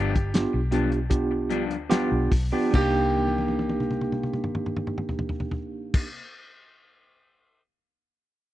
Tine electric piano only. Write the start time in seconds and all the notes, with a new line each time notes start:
0.34 B3 D4 F4 G4
0.72 B3 D4 F4 G4
1.10 B3 D4 F4 G4
1.90 B3 D4 F4 G4
2.53 B3 D4 F4 G4
2.71 A#3 D4 D#4 G4